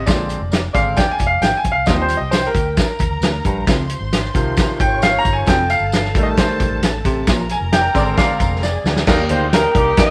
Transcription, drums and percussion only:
0.07 kick medium
0.07 snare loud
0.07 closed hi-hat medium
0.07 tambourine loud
0.29 closed hi-hat medium
0.29 tambourine medium
0.52 snare loud
0.52 closed hi-hat loud
0.52 tambourine medium
0.75 kick medium
0.75 closed hi-hat medium
0.75 tambourine soft
0.96 kick medium
0.96 snare loud
0.96 closed hi-hat medium
0.96 tambourine medium
1.19 kick medium
1.19 closed hi-hat medium
1.19 tambourine medium
1.42 snare loud
1.42 closed hi-hat medium
1.42 tambourine medium
1.64 kick medium
1.64 closed hi-hat medium
1.64 tambourine soft
1.86 kick medium
1.86 snare loud
1.86 closed hi-hat medium
1.86 tambourine loud
2.09 closed hi-hat medium
2.09 tambourine medium
2.32 snare loud
2.32 closed hi-hat medium
2.32 tambourine medium
2.44 snare soft
2.55 kick medium
2.55 closed hi-hat medium
2.55 tambourine medium
2.77 kick medium
2.77 snare loud
2.77 closed hi-hat medium
2.77 tambourine loud
2.99 kick medium
2.99 closed hi-hat medium
2.99 tambourine medium
3.22 snare loud
3.22 closed hi-hat medium
3.22 tambourine medium
3.44 kick medium
3.44 closed hi-hat medium
3.44 tambourine soft
3.67 kick loud
3.67 snare loud
3.67 closed hi-hat medium
3.67 tambourine loud
3.89 closed hi-hat medium
3.89 tambourine medium
4.13 snare loud
4.13 closed hi-hat medium
4.13 tambourine medium
4.24 snare soft
4.35 kick medium
4.35 closed hi-hat medium
4.35 tambourine medium
4.57 kick medium
4.57 snare loud
4.57 closed hi-hat medium
4.57 tambourine medium
4.80 kick medium
4.80 closed hi-hat medium
4.80 tambourine medium
5.02 snare loud
5.02 closed hi-hat medium
5.02 tambourine medium
5.25 kick medium
5.25 closed hi-hat medium
5.25 tambourine soft
5.47 kick loud
5.47 snare loud
5.47 closed hi-hat medium
5.47 tambourine loud
5.70 closed hi-hat medium
5.70 tambourine medium
5.92 snare loud
5.92 closed hi-hat loud
5.92 tambourine medium
6.05 snare soft
6.15 kick loud
6.15 closed hi-hat medium
6.15 tambourine soft
6.37 kick medium
6.37 snare loud
6.37 closed hi-hat medium
6.37 tambourine loud
6.60 kick medium
6.60 closed hi-hat medium
6.60 tambourine medium
6.83 snare loud
6.83 closed hi-hat loud
6.83 tambourine medium
7.05 kick medium
7.05 closed hi-hat medium
7.05 tambourine medium
7.27 kick medium
7.27 snare loud
7.27 closed hi-hat loud
7.27 tambourine loud
7.49 closed hi-hat medium
7.49 tambourine medium
7.72 snare loud
7.72 closed hi-hat loud
7.72 tambourine medium
7.95 kick medium
7.95 closed hi-hat medium
7.95 tambourine medium
8.17 kick medium
8.17 snare loud
8.17 closed hi-hat medium
8.17 tambourine loud
8.40 kick medium
8.40 closed hi-hat medium
8.40 tambourine medium
8.63 snare medium
8.63 tambourine medium
8.85 snare medium
8.85 tambourine medium
8.96 snare medium
9.07 kick loud
9.07 snare loud
9.07 crash loud
9.29 closed hi-hat medium
9.53 snare loud
9.53 closed hi-hat loud
9.75 kick loud
9.75 closed hi-hat medium
9.97 kick loud
9.97 snare loud
9.97 closed hi-hat medium

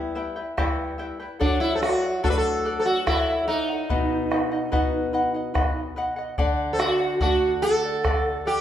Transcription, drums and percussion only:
0.58 bombo rim medium
0.58 bombo low medium
1.00 bombo rim soft
1.41 bombo rim soft
1.41 bombo low medium
1.83 bombo rim medium
2.04 bombo rim soft
2.24 bombo rim soft
2.24 bombo low medium
3.07 bombo rim medium
3.07 bombo low medium
3.49 bombo rim soft
3.70 bombo rim soft
3.90 bombo rim soft
3.90 bombo low medium
4.32 bombo rim medium
4.52 bombo rim soft
4.73 bombo rim soft
4.73 bombo low medium
5.55 bombo rim medium
5.55 bombo low medium
5.98 bombo rim soft
6.18 bombo rim soft
6.38 bombo rim soft
6.38 bombo low medium
6.80 bombo rim medium
7.00 bombo rim soft
7.20 bombo rim soft
7.20 bombo low medium
8.05 bombo rim medium
8.05 bombo low medium
8.47 bombo rim soft

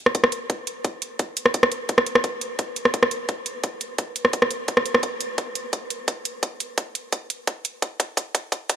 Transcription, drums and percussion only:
0.06 cross-stick soft
0.15 kick medium
0.15 closed hi-hat medium
0.24 cross-stick soft
0.32 closed hi-hat medium
0.50 kick medium
0.50 closed hi-hat medium
0.67 closed hi-hat loud
0.84 kick loud
0.84 closed hi-hat medium
1.02 closed hi-hat medium
1.19 kick medium
1.19 closed hi-hat medium
1.37 closed hi-hat medium
1.46 cross-stick soft
1.54 kick medium
1.54 closed hi-hat medium
1.63 cross-stick soft
1.72 closed hi-hat medium
1.89 kick medium
1.89 closed hi-hat medium
1.98 cross-stick soft
2.06 closed hi-hat medium
2.15 cross-stick medium
2.24 kick loud
2.24 closed hi-hat medium
2.41 closed hi-hat medium
2.59 kick loud
2.59 closed hi-hat medium
2.76 closed hi-hat medium
2.85 cross-stick soft
2.94 kick medium
2.94 closed hi-hat medium
3.03 cross-stick soft
3.11 closed hi-hat medium
3.29 kick medium
3.29 closed hi-hat medium
3.46 closed hi-hat medium
3.63 kick loud
3.63 closed hi-hat medium
3.81 closed hi-hat medium
3.98 kick medium
3.98 closed hi-hat medium
4.16 closed hi-hat medium
4.25 cross-stick soft
4.33 kick loud
4.33 closed hi-hat medium
4.42 cross-stick soft
4.51 closed hi-hat medium
4.68 kick loud
4.68 closed hi-hat medium
4.77 cross-stick soft
4.86 closed hi-hat medium
4.95 cross-stick medium
5.03 kick loud
5.03 closed hi-hat medium
5.21 closed hi-hat medium
5.38 kick loud
5.38 closed hi-hat medium
5.55 closed hi-hat medium
5.73 kick loud
5.73 closed hi-hat medium
5.90 closed hi-hat medium
6.08 kick loud
6.08 closed hi-hat medium
6.25 closed hi-hat medium
6.43 kick loud
6.43 closed hi-hat medium
6.60 closed hi-hat medium
6.78 kick loud
6.78 closed hi-hat medium
6.95 closed hi-hat medium
7.12 kick loud
7.12 closed hi-hat medium
7.30 closed hi-hat medium
7.47 kick loud
7.47 closed hi-hat medium
7.65 closed hi-hat medium
7.82 kick loud
7.82 closed hi-hat medium
8.00 kick loud
8.00 closed hi-hat loud
8.17 kick loud
8.17 closed hi-hat medium
8.35 kick loud
8.35 closed hi-hat medium
8.52 kick loud
8.52 closed hi-hat medium
8.70 kick loud
8.70 closed hi-hat loud

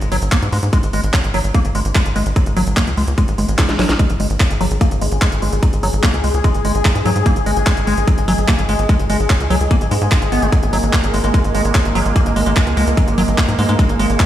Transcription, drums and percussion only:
0.01 closed hi-hat medium
0.12 open hi-hat loud
0.22 closed hi-hat medium
0.32 kick loud
0.32 clap loud
0.32 closed hi-hat medium
0.42 closed hi-hat medium
0.52 open hi-hat medium
0.63 closed hi-hat medium
0.73 kick loud
0.73 closed hi-hat medium
0.83 closed hi-hat medium
0.93 open hi-hat loud
1.03 closed hi-hat medium
1.14 kick loud
1.14 clap loud
1.14 closed hi-hat loud
1.24 closed hi-hat medium
1.34 open hi-hat medium
1.44 closed hi-hat medium
1.54 kick loud
1.54 closed hi-hat medium
1.65 closed hi-hat medium
1.75 open hi-hat loud
1.85 closed hi-hat medium
1.95 kick loud
1.95 clap loud
1.95 closed hi-hat loud
2.06 closed hi-hat medium
2.16 open hi-hat medium
2.26 closed hi-hat medium
2.36 kick loud
2.36 closed hi-hat loud
2.46 closed hi-hat medium
2.56 open hi-hat loud
2.67 closed hi-hat medium
2.77 kick loud
2.77 clap loud
2.77 closed hi-hat loud
2.87 closed hi-hat medium
2.97 open hi-hat medium
3.08 closed hi-hat medium
3.18 kick loud
3.18 closed hi-hat loud
3.28 closed hi-hat medium
3.38 open hi-hat loud
3.48 closed hi-hat medium
3.59 kick loud
3.59 snare medium
3.59 clap loud
3.59 closed hi-hat loud
3.69 snare medium
3.69 closed hi-hat medium
3.79 snare medium
3.79 open hi-hat medium
3.89 snare medium
3.89 closed hi-hat medium
3.99 kick loud
3.99 closed hi-hat loud
4.10 closed hi-hat medium
4.20 open hi-hat loud
4.30 closed hi-hat medium
4.40 kick loud
4.40 clap loud
4.40 closed hi-hat loud
4.50 closed hi-hat medium
4.61 open hi-hat medium
4.71 closed hi-hat medium
4.81 kick loud
4.81 closed hi-hat loud
4.91 closed hi-hat medium
5.01 open hi-hat loud
5.12 closed hi-hat medium
5.22 kick loud
5.22 clap loud
5.22 closed hi-hat loud
5.32 closed hi-hat medium
5.42 open hi-hat medium
5.52 closed hi-hat medium
5.63 kick loud
5.63 closed hi-hat loud
5.73 closed hi-hat medium
5.83 open hi-hat loud
5.93 closed hi-hat medium
6.03 kick loud
6.03 clap loud
6.03 closed hi-hat medium
6.14 closed hi-hat medium
6.24 open hi-hat loud
6.34 closed hi-hat medium
6.44 kick loud
6.44 closed hi-hat loud
6.54 closed hi-hat medium
6.65 open hi-hat loud
6.75 closed hi-hat medium
6.85 kick loud
6.85 clap loud
6.85 closed hi-hat loud
6.95 closed hi-hat medium
7.05 open hi-hat loud
7.16 closed hi-hat medium
7.26 kick loud
7.26 closed hi-hat medium
7.36 closed hi-hat medium
7.46 open hi-hat loud
7.57 closed hi-hat medium
7.67 kick loud
7.67 clap loud
7.67 closed hi-hat medium
7.77 closed hi-hat medium
7.87 open hi-hat loud
7.97 closed hi-hat medium
8.08 kick loud
8.08 closed hi-hat medium
8.18 closed hi-hat medium
8.28 open hi-hat loud
8.38 closed hi-hat medium
8.48 kick loud
8.48 clap loud
8.48 closed hi-hat medium
8.59 closed hi-hat medium
8.69 open hi-hat loud
8.79 closed hi-hat medium
8.89 kick loud
8.89 closed hi-hat medium
8.99 closed hi-hat soft
9.10 open hi-hat loud
9.20 closed hi-hat soft
9.30 kick loud
9.30 clap loud
9.30 closed hi-hat medium
9.40 closed hi-hat medium
9.50 open hi-hat loud
9.61 closed hi-hat medium
9.71 kick loud
9.71 closed hi-hat medium
9.81 closed hi-hat medium
9.91 open hi-hat loud
10.01 closed hi-hat medium
10.12 kick loud
10.12 clap loud
10.12 closed hi-hat medium
10.22 closed hi-hat medium
10.32 open hi-hat medium
10.42 closed hi-hat medium
10.52 kick loud
10.52 closed hi-hat medium
10.63 closed hi-hat medium
10.73 open hi-hat loud
10.83 closed hi-hat soft
10.93 kick loud
10.93 clap loud
10.93 closed hi-hat medium
11.04 closed hi-hat medium
11.14 open hi-hat medium
11.24 closed hi-hat medium
11.34 kick loud
11.34 closed hi-hat medium
11.44 closed hi-hat medium
11.55 open hi-hat loud
11.65 closed hi-hat medium
11.75 kick loud
11.75 clap loud
11.75 closed hi-hat medium
11.85 closed hi-hat medium
11.95 open hi-hat medium
12.06 closed hi-hat soft
12.16 kick loud
12.16 closed hi-hat loud
12.26 closed hi-hat medium
12.36 open hi-hat loud
12.46 closed hi-hat medium
12.57 kick loud
12.57 clap loud
12.57 closed hi-hat medium
12.67 closed hi-hat medium
12.77 open hi-hat medium
12.87 closed hi-hat medium
12.97 kick loud
12.97 closed hi-hat medium
13.08 closed hi-hat medium
13.18 open hi-hat loud
13.28 closed hi-hat medium
13.38 kick loud
13.38 clap loud
13.38 closed hi-hat loud
13.48 closed hi-hat medium
13.59 open hi-hat medium
13.69 closed hi-hat medium
13.79 kick loud
13.79 closed hi-hat loud
13.89 closed hi-hat medium
13.99 open hi-hat loud
14.10 closed hi-hat medium
14.20 kick loud
14.20 clap loud
14.20 closed hi-hat loud

